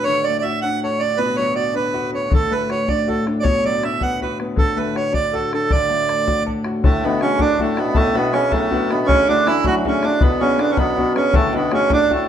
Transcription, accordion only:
0, 0, Header, 1, 2, 480
1, 0, Start_track
1, 0, Key_signature, 2, "major"
1, 0, Tempo, 376176
1, 63, Time_signature, 6, 3, 24, 8
1, 15674, End_track
2, 0, Start_track
2, 0, Title_t, "Accordion"
2, 0, Program_c, 0, 21
2, 50, Note_on_c, 0, 73, 105
2, 305, Note_on_c, 0, 74, 82
2, 319, Note_off_c, 0, 73, 0
2, 474, Note_off_c, 0, 74, 0
2, 493, Note_on_c, 0, 74, 59
2, 540, Note_on_c, 0, 76, 83
2, 552, Note_off_c, 0, 74, 0
2, 763, Note_off_c, 0, 76, 0
2, 787, Note_on_c, 0, 78, 93
2, 1023, Note_off_c, 0, 78, 0
2, 1066, Note_on_c, 0, 73, 66
2, 1270, Note_on_c, 0, 74, 77
2, 1294, Note_off_c, 0, 73, 0
2, 1499, Note_on_c, 0, 71, 87
2, 1513, Note_off_c, 0, 74, 0
2, 1740, Note_off_c, 0, 71, 0
2, 1740, Note_on_c, 0, 73, 83
2, 1968, Note_off_c, 0, 73, 0
2, 1982, Note_on_c, 0, 74, 74
2, 2231, Note_off_c, 0, 74, 0
2, 2241, Note_on_c, 0, 71, 79
2, 2691, Note_off_c, 0, 71, 0
2, 2737, Note_on_c, 0, 73, 66
2, 2968, Note_off_c, 0, 73, 0
2, 2983, Note_on_c, 0, 69, 84
2, 3216, Note_on_c, 0, 71, 82
2, 3230, Note_off_c, 0, 69, 0
2, 3452, Note_off_c, 0, 71, 0
2, 3455, Note_on_c, 0, 73, 78
2, 3680, Note_on_c, 0, 74, 78
2, 3688, Note_off_c, 0, 73, 0
2, 3930, Note_on_c, 0, 69, 60
2, 3940, Note_off_c, 0, 74, 0
2, 4147, Note_off_c, 0, 69, 0
2, 4336, Note_on_c, 0, 74, 63
2, 4376, Note_on_c, 0, 73, 92
2, 4395, Note_off_c, 0, 74, 0
2, 4648, Note_off_c, 0, 73, 0
2, 4660, Note_on_c, 0, 74, 83
2, 4895, Note_off_c, 0, 74, 0
2, 4901, Note_on_c, 0, 76, 76
2, 5132, Note_off_c, 0, 76, 0
2, 5135, Note_on_c, 0, 78, 92
2, 5363, Note_off_c, 0, 78, 0
2, 5383, Note_on_c, 0, 71, 65
2, 5595, Note_off_c, 0, 71, 0
2, 5845, Note_on_c, 0, 69, 86
2, 6082, Note_on_c, 0, 71, 65
2, 6103, Note_off_c, 0, 69, 0
2, 6327, Note_off_c, 0, 71, 0
2, 6333, Note_on_c, 0, 73, 73
2, 6546, Note_off_c, 0, 73, 0
2, 6555, Note_on_c, 0, 74, 89
2, 6806, Note_on_c, 0, 69, 66
2, 6818, Note_off_c, 0, 74, 0
2, 7040, Note_off_c, 0, 69, 0
2, 7059, Note_on_c, 0, 69, 69
2, 7292, Note_off_c, 0, 69, 0
2, 7294, Note_on_c, 0, 74, 101
2, 8209, Note_off_c, 0, 74, 0
2, 8733, Note_on_c, 0, 57, 94
2, 8974, Note_on_c, 0, 59, 87
2, 8986, Note_off_c, 0, 57, 0
2, 9189, Note_off_c, 0, 59, 0
2, 9208, Note_on_c, 0, 61, 89
2, 9446, Note_off_c, 0, 61, 0
2, 9451, Note_on_c, 0, 62, 98
2, 9703, Note_on_c, 0, 57, 71
2, 9705, Note_off_c, 0, 62, 0
2, 9923, Note_on_c, 0, 59, 88
2, 9936, Note_off_c, 0, 57, 0
2, 10135, Note_on_c, 0, 57, 106
2, 10163, Note_off_c, 0, 59, 0
2, 10392, Note_on_c, 0, 59, 97
2, 10407, Note_off_c, 0, 57, 0
2, 10623, Note_on_c, 0, 61, 88
2, 10640, Note_off_c, 0, 59, 0
2, 10855, Note_on_c, 0, 57, 88
2, 10872, Note_off_c, 0, 61, 0
2, 11352, Note_on_c, 0, 59, 90
2, 11366, Note_off_c, 0, 57, 0
2, 11563, Note_on_c, 0, 61, 115
2, 11572, Note_off_c, 0, 59, 0
2, 11839, Note_off_c, 0, 61, 0
2, 11846, Note_on_c, 0, 62, 104
2, 12083, Note_on_c, 0, 64, 104
2, 12086, Note_off_c, 0, 62, 0
2, 12320, Note_off_c, 0, 64, 0
2, 12331, Note_on_c, 0, 66, 112
2, 12441, Note_off_c, 0, 66, 0
2, 12602, Note_on_c, 0, 61, 77
2, 12806, Note_on_c, 0, 62, 89
2, 12822, Note_off_c, 0, 61, 0
2, 13030, Note_on_c, 0, 59, 93
2, 13041, Note_off_c, 0, 62, 0
2, 13275, Note_on_c, 0, 61, 93
2, 13291, Note_off_c, 0, 59, 0
2, 13516, Note_on_c, 0, 62, 84
2, 13519, Note_off_c, 0, 61, 0
2, 13656, Note_on_c, 0, 61, 78
2, 13667, Note_off_c, 0, 62, 0
2, 13745, Note_off_c, 0, 61, 0
2, 13754, Note_on_c, 0, 59, 91
2, 14203, Note_off_c, 0, 59, 0
2, 14244, Note_on_c, 0, 61, 80
2, 14473, Note_on_c, 0, 57, 99
2, 14478, Note_off_c, 0, 61, 0
2, 14731, Note_off_c, 0, 57, 0
2, 14751, Note_on_c, 0, 59, 79
2, 14953, Note_off_c, 0, 59, 0
2, 14978, Note_on_c, 0, 61, 89
2, 15204, Note_off_c, 0, 61, 0
2, 15224, Note_on_c, 0, 62, 101
2, 15465, Note_off_c, 0, 62, 0
2, 15466, Note_on_c, 0, 57, 78
2, 15669, Note_off_c, 0, 57, 0
2, 15674, End_track
0, 0, End_of_file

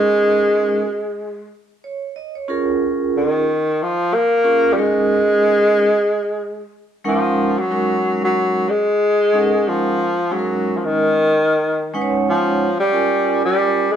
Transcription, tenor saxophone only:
0, 0, Header, 1, 2, 480
1, 0, Start_track
1, 0, Tempo, 652174
1, 1834, Time_signature, 4, 2, 24, 8
1, 10276, End_track
2, 0, Start_track
2, 0, Title_t, "Tenor saxophone"
2, 0, Program_c, 0, 66
2, 0, Note_on_c, 0, 56, 115
2, 1122, Note_off_c, 0, 56, 0
2, 2332, Note_on_c, 0, 51, 90
2, 2817, Note_on_c, 0, 53, 98
2, 2828, Note_off_c, 0, 51, 0
2, 3047, Note_on_c, 0, 58, 117
2, 3058, Note_off_c, 0, 53, 0
2, 3482, Note_on_c, 0, 55, 67
2, 3493, Note_off_c, 0, 58, 0
2, 3527, Note_on_c, 0, 56, 118
2, 3538, Note_off_c, 0, 55, 0
2, 4961, Note_off_c, 0, 56, 0
2, 5204, Note_on_c, 0, 53, 87
2, 5587, Note_on_c, 0, 54, 89
2, 5598, Note_off_c, 0, 53, 0
2, 6060, Note_off_c, 0, 54, 0
2, 6064, Note_on_c, 0, 54, 90
2, 6398, Note_on_c, 0, 56, 105
2, 6409, Note_off_c, 0, 54, 0
2, 7127, Note_on_c, 0, 53, 89
2, 7138, Note_off_c, 0, 56, 0
2, 7601, Note_on_c, 0, 54, 96
2, 7612, Note_off_c, 0, 53, 0
2, 7926, Note_on_c, 0, 53, 60
2, 7937, Note_off_c, 0, 54, 0
2, 7985, Note_on_c, 0, 51, 102
2, 7996, Note_off_c, 0, 53, 0
2, 8848, Note_off_c, 0, 51, 0
2, 9047, Note_on_c, 0, 53, 95
2, 9393, Note_off_c, 0, 53, 0
2, 9415, Note_on_c, 0, 55, 105
2, 9865, Note_off_c, 0, 55, 0
2, 9900, Note_on_c, 0, 55, 106
2, 10243, Note_on_c, 0, 56, 99
2, 10254, Note_off_c, 0, 55, 0
2, 10276, Note_off_c, 0, 56, 0
2, 10276, End_track
0, 0, End_of_file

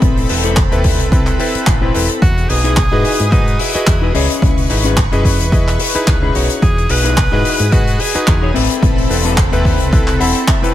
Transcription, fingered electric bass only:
0, 0, Header, 1, 3, 480
1, 0, Start_track
1, 0, Key_signature, 4, "major"
1, 0, Tempo, 550459
1, 17, Time_signature, 4, 2, 24, 8
1, 9368, End_track
2, 0, Start_track
2, 0, Title_t, "Fingered electric bass"
2, 0, Program_c, 0, 33
2, 17, Note_on_c, 0, 33, 101
2, 212, Note_off_c, 0, 33, 0
2, 258, Note_on_c, 0, 28, 93
2, 585, Note_off_c, 0, 28, 0
2, 629, Note_on_c, 0, 39, 94
2, 869, Note_off_c, 0, 39, 0
2, 869, Note_on_c, 0, 36, 84
2, 1182, Note_off_c, 0, 36, 0
2, 1456, Note_on_c, 0, 33, 80
2, 1652, Note_off_c, 0, 33, 0
2, 1699, Note_on_c, 0, 28, 86
2, 1802, Note_off_c, 0, 28, 0
2, 1936, Note_on_c, 0, 40, 105
2, 2132, Note_off_c, 0, 40, 0
2, 2179, Note_on_c, 0, 35, 94
2, 2506, Note_off_c, 0, 35, 0
2, 2550, Note_on_c, 0, 44, 96
2, 2636, Note_off_c, 0, 44, 0
2, 2789, Note_on_c, 0, 44, 76
2, 3102, Note_off_c, 0, 44, 0
2, 3376, Note_on_c, 0, 40, 82
2, 3572, Note_off_c, 0, 40, 0
2, 3615, Note_on_c, 0, 37, 88
2, 3720, Note_off_c, 0, 37, 0
2, 3857, Note_on_c, 0, 37, 104
2, 4052, Note_off_c, 0, 37, 0
2, 4097, Note_on_c, 0, 32, 101
2, 4425, Note_off_c, 0, 32, 0
2, 4469, Note_on_c, 0, 42, 93
2, 4708, Note_off_c, 0, 42, 0
2, 4708, Note_on_c, 0, 40, 81
2, 5021, Note_off_c, 0, 40, 0
2, 5295, Note_on_c, 0, 37, 89
2, 5491, Note_off_c, 0, 37, 0
2, 5536, Note_on_c, 0, 35, 93
2, 5641, Note_off_c, 0, 35, 0
2, 5776, Note_on_c, 0, 40, 105
2, 5971, Note_off_c, 0, 40, 0
2, 6016, Note_on_c, 0, 35, 101
2, 6345, Note_off_c, 0, 35, 0
2, 6386, Note_on_c, 0, 44, 101
2, 6474, Note_off_c, 0, 44, 0
2, 6624, Note_on_c, 0, 44, 83
2, 6940, Note_off_c, 0, 44, 0
2, 7216, Note_on_c, 0, 40, 84
2, 7412, Note_off_c, 0, 40, 0
2, 7455, Note_on_c, 0, 33, 88
2, 7560, Note_off_c, 0, 33, 0
2, 7696, Note_on_c, 0, 33, 101
2, 7892, Note_off_c, 0, 33, 0
2, 7935, Note_on_c, 0, 28, 101
2, 8264, Note_off_c, 0, 28, 0
2, 8307, Note_on_c, 0, 39, 103
2, 8547, Note_off_c, 0, 39, 0
2, 8547, Note_on_c, 0, 36, 80
2, 8861, Note_off_c, 0, 36, 0
2, 8896, Note_on_c, 0, 28, 97
2, 9001, Note_off_c, 0, 28, 0
2, 9368, End_track
3, 0, Start_track
3, 0, Title_t, "Muted fingered electric bass strokes"
3, 1349, Note_on_c, 9, 29, 42
3, 1436, Note_off_c, 9, 29, 0
3, 3268, Note_on_c, 9, 29, 46
3, 3355, Note_off_c, 9, 29, 0
3, 5188, Note_on_c, 9, 29, 45
3, 5275, Note_off_c, 9, 29, 0
3, 7106, Note_on_c, 9, 29, 45
3, 7193, Note_off_c, 9, 29, 0
3, 9368, End_track
0, 0, End_of_file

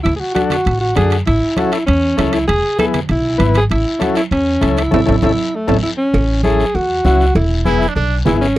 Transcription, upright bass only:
0, 0, Header, 1, 2, 480
1, 0, Start_track
1, 0, Key_signature, 3, "major"
1, 0, Tempo, 304105
1, 77, Time_signature, 4, 2, 24, 8
1, 13549, End_track
2, 0, Start_track
2, 0, Title_t, "Upright bass"
2, 0, Program_c, 0, 32
2, 83, Note_on_c, 0, 38, 93
2, 273, Note_off_c, 0, 38, 0
2, 1046, Note_on_c, 0, 33, 93
2, 1427, Note_off_c, 0, 33, 0
2, 1528, Note_on_c, 0, 42, 80
2, 1908, Note_off_c, 0, 42, 0
2, 2006, Note_on_c, 0, 33, 90
2, 2195, Note_off_c, 0, 33, 0
2, 2968, Note_on_c, 0, 40, 86
2, 3348, Note_off_c, 0, 40, 0
2, 3445, Note_on_c, 0, 37, 82
2, 3827, Note_off_c, 0, 37, 0
2, 3920, Note_on_c, 0, 28, 92
2, 4112, Note_off_c, 0, 28, 0
2, 4884, Note_on_c, 0, 35, 85
2, 5266, Note_off_c, 0, 35, 0
2, 5357, Note_on_c, 0, 32, 83
2, 5742, Note_off_c, 0, 32, 0
2, 5851, Note_on_c, 0, 33, 92
2, 6039, Note_off_c, 0, 33, 0
2, 6807, Note_on_c, 0, 40, 85
2, 7189, Note_off_c, 0, 40, 0
2, 7297, Note_on_c, 0, 37, 90
2, 7675, Note_off_c, 0, 37, 0
2, 7778, Note_on_c, 0, 33, 87
2, 7949, Note_off_c, 0, 33, 0
2, 8028, Note_on_c, 0, 33, 98
2, 8194, Note_off_c, 0, 33, 0
2, 8262, Note_on_c, 0, 33, 90
2, 8431, Note_off_c, 0, 33, 0
2, 8973, Note_on_c, 0, 33, 93
2, 9146, Note_off_c, 0, 33, 0
2, 9686, Note_on_c, 0, 33, 93
2, 10452, Note_off_c, 0, 33, 0
2, 10648, Note_on_c, 0, 40, 81
2, 11029, Note_off_c, 0, 40, 0
2, 11124, Note_on_c, 0, 37, 88
2, 11507, Note_off_c, 0, 37, 0
2, 11603, Note_on_c, 0, 28, 98
2, 12370, Note_off_c, 0, 28, 0
2, 12560, Note_on_c, 0, 35, 84
2, 12944, Note_off_c, 0, 35, 0
2, 13056, Note_on_c, 0, 32, 78
2, 13433, Note_off_c, 0, 32, 0
2, 13549, End_track
0, 0, End_of_file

